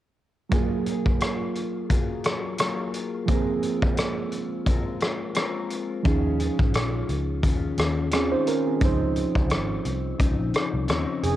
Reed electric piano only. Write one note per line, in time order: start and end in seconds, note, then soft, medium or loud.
0.49 3.23 F#3 medium
0.49 3.24 A#3 medium
0.49 3.25 F4 medium
0.54 3.26 G#4 medium
3.26 6.00 F3 medium
3.26 6.01 A#3 soft
3.26 6.01 C4 medium
3.31 6.02 G#4 medium
6.03 8.07 F3 medium
6.03 8.08 C#4 soft
6.03 8.09 D#4 medium
6.08 8.10 G#4 medium
8.13 8.31 C4 medium
8.13 8.31 G#4 medium
8.32 8.47 D#4 medium
8.32 8.46 C5 medium
8.48 8.66 C#4 medium
8.48 8.66 A#4 medium
8.67 9.00 C4 soft
8.67 8.99 G#4 medium
8.80 11.36 F3 medium
8.80 11.36 C#4 medium
8.80 11.36 D#4 medium
8.85 11.36 C5 medium